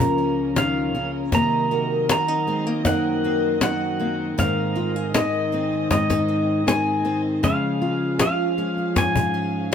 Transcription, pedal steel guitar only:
0.00 0.60 A#5 loud
0.58 1.11 F5 loud
1.35 2.10 A#5 loud
2.12 2.89 A#5 loud
2.87 3.62 F#5 loud
3.63 4.39 F#5 medium
4.40 5.17 F5 medium
5.16 5.90 D#5 medium
5.91 6.70 D#5 medium
6.68 7.21 G#5 medium
7.44 8.20 F5 medium
8.21 8.99 F5 medium
8.98 9.73 G#5 loud

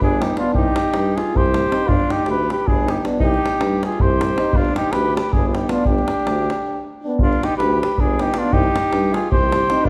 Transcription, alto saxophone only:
0.02 0.23 D4 medium
0.22 0.37 D#4 medium
0.41 0.54 D4 medium
0.57 1.19 D#4 medium
1.18 1.38 F4 medium
1.36 1.90 G4 medium
1.89 2.13 D4 medium
2.11 2.26 D#4 medium
2.26 2.48 G4 medium
2.52 2.69 G4 medium
2.68 2.87 D4 medium
2.86 3.03 D#4 medium
3.20 3.79 D#4 loud
3.87 4.02 F4 medium
4.01 4.58 G4 medium
4.57 4.77 D4 medium
4.78 4.94 D#4 medium
4.92 5.15 G4 medium
5.16 5.34 G4 medium
5.33 5.50 D4 medium
5.49 5.58 F4 medium
5.56 5.72 D#4 medium
5.70 5.86 D4 medium
5.89 6.84 D4 medium
7.22 7.46 D4 medium
7.44 7.56 D#4 medium
7.57 7.79 G4 medium
7.82 8.01 G4 medium
8.00 8.23 D4 medium
8.21 8.38 D#4 medium
8.37 8.54 D4 medium
8.53 9.14 D#4 loud
9.13 9.30 F4 medium
9.30 9.84 G4 medium
9.83 9.89 D4 loud

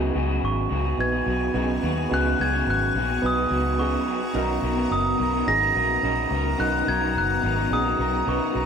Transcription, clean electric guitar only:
0.00 0.14 C#3 medium
0.00 0.12 F#3 medium
0.00 0.13 B3 medium
0.00 0.14 F#4 loud
0.00 0.15 G#4 loud
0.13 0.28 F#3 medium
0.13 0.28 B3 medium
0.13 0.27 F#4 medium
0.17 0.26 G#4 medium
0.27 0.72 C#3 medium
0.27 0.68 F#3 medium
0.27 0.70 B3 medium
0.27 0.71 F#4 medium
0.27 0.70 G#4 medium
0.69 0.84 F#3 medium
0.69 0.85 B3 medium
0.69 0.85 F#4 medium
0.69 0.83 G#4 medium
0.84 1.14 B3 soft
0.84 1.14 F#4 medium
0.84 1.11 G#4 medium
1.12 1.27 B3 medium
1.12 1.27 F#4 medium
1.12 1.27 G#4 medium
1.26 1.53 F#3 medium
1.26 1.54 B3 medium
1.26 1.54 F#4 medium
1.26 1.54 G#4 medium
1.53 1.82 C#3 medium
1.53 1.80 F#3 medium
1.53 1.81 B3 medium
1.53 1.82 F#4 medium
1.53 1.83 G#4 medium
1.81 1.96 F#3 medium
1.81 1.97 B3 medium
1.81 1.96 F#4 medium
1.81 1.95 G#4 medium
1.96 2.11 B3 soft
1.96 2.11 F#4 soft
1.96 2.10 G#4 medium
2.11 2.39 C#3 medium
2.11 2.38 F#3 medium
2.11 2.39 B3 medium
2.11 2.40 F#4 medium
2.11 2.40 G#4 loud
2.39 2.53 F#3 medium
2.39 2.52 B3 medium
2.39 2.52 F#4 medium
2.39 2.51 G#4 medium
2.52 2.96 C#3 medium
2.52 2.93 F#3 medium
2.52 2.95 B3 medium
2.52 2.95 F#4 medium
2.52 2.94 G#4 medium
2.94 3.09 F#3 medium
2.94 3.10 B3 medium
2.94 3.09 F#4 medium
2.94 3.07 G#4 medium
3.08 3.38 B3 soft
3.08 3.37 F#4 medium
3.08 3.34 G#4 medium
3.36 3.51 F#4 medium
3.36 3.50 G#4 medium
3.40 3.50 B3 soft
3.50 3.78 F#3 medium
3.50 3.78 B3 medium
3.50 3.79 F#4 medium
3.50 3.80 G#4 medium
3.78 4.07 C#3 medium
3.78 4.05 F#3 medium
3.78 4.07 B3 medium
3.78 4.08 F#4 medium
3.78 4.08 G#4 medium
4.06 4.21 F#3 medium
4.06 4.22 B3 medium
4.06 4.21 F#4 medium
4.06 4.19 G#4 medium
4.20 4.34 B3 soft
4.20 4.35 F#4 soft
4.20 4.34 G#4 medium
4.33 4.62 B2 loud
4.33 4.62 D#3 medium
4.33 4.61 F#3 medium
4.33 4.62 B3 loud
4.33 4.63 D#4 loud
4.33 4.63 A#4 loud
4.62 4.76 F#3 medium
4.62 4.75 B3 medium
4.62 4.75 D#4 medium
4.62 4.74 A#4 medium
4.75 5.20 B2 medium
4.75 5.19 D#3 medium
4.75 5.16 F#3 medium
4.75 5.18 B3 medium
4.75 5.19 D#4 medium
4.75 5.18 A#4 medium
5.18 5.32 F#3 medium
5.18 5.33 B3 medium
5.18 5.33 D#4 medium
5.22 5.31 A#4 medium
5.33 5.62 F#3 soft
5.33 5.61 B3 soft
5.33 5.60 D#4 medium
5.33 5.58 A#4 medium
5.60 5.73 F#3 soft
5.60 5.74 B3 medium
5.60 5.75 D#4 medium
5.60 5.74 A#4 medium
5.74 6.03 F#3 medium
5.74 6.03 B3 medium
5.74 6.03 D#4 medium
5.74 6.04 A#4 medium
6.02 6.30 B2 medium
6.02 6.31 D#3 medium
6.02 6.29 F#3 medium
6.02 6.30 B3 medium
6.02 6.31 D#4 medium
6.02 6.32 A#4 medium
6.30 6.44 F#3 medium
6.30 6.44 B3 medium
6.30 6.44 D#4 medium
6.34 6.42 A#4 medium
6.43 6.58 F#3 soft
6.43 6.58 B3 soft
6.43 6.58 D#4 soft
6.43 6.58 A#4 medium
6.58 6.86 B2 medium
6.58 6.87 D#3 medium
6.58 6.85 F#3 medium
6.58 6.86 B3 medium
6.58 6.87 D#4 medium
6.58 6.88 A#4 medium
6.86 7.00 F#3 medium
6.86 7.00 B3 medium
6.86 6.99 D#4 medium
6.86 6.99 A#4 medium
7.00 7.44 B2 medium
7.00 7.44 D#3 medium
7.00 7.41 F#3 medium
7.00 7.42 B3 medium
7.00 7.43 D#4 medium
7.00 7.42 A#4 medium
7.42 7.57 F#3 medium
7.42 7.57 B3 medium
7.42 7.56 D#4 medium
7.42 7.55 A#4 medium
7.56 7.86 F#3 medium
7.56 7.85 B3 medium
7.56 7.84 D#4 medium
7.56 7.82 A#4 medium
7.84 7.96 F#3 soft
7.84 7.97 B3 soft
7.84 7.99 D#4 medium
7.84 7.98 A#4 medium
7.98 8.25 F#3 medium
7.98 8.26 B3 medium
7.98 8.26 D#4 medium
7.98 8.27 A#4 medium
8.25 8.54 B2 medium
8.25 8.54 D#3 medium
8.25 8.51 F#3 medium
8.25 8.53 B3 medium
8.25 8.54 D#4 medium
8.25 8.55 A#4 medium
8.52 8.66 F#3 medium
8.52 8.66 B3 medium
8.52 8.66 D#4 medium
8.52 8.66 A#4 medium

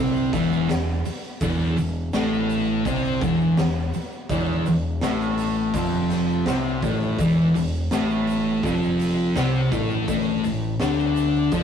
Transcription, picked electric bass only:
0.00 0.30 C2 medium
0.33 0.67 E1 medium
0.69 1.03 E1 medium
1.06 muted picked electric bass stroke soft
1.41 1.75 E1 medium
1.77 2.11 E1 medium
2.14 2.82 A1 medium
2.85 3.19 C2 medium
3.21 3.55 E1 medium
3.58 3.91 E1 medium
3.94 muted picked electric bass stroke soft
4.30 4.64 E1 medium
4.67 5.00 E1 medium
5.02 5.71 A1 loud
5.74 6.43 F1 medium
6.47 6.80 C2 loud
6.82 7.16 A1 loud
7.19 7.52 E1 loud
7.55 7.89 E1 medium
7.91 8.59 A1 loud
8.63 9.31 F1 loud
9.36 9.69 C2 loud
9.72 10.05 A1 medium
10.08 10.41 A1 medium
10.44 10.77 A1 medium
10.80 11.48 D2 medium
11.52 11.63 F2 medium

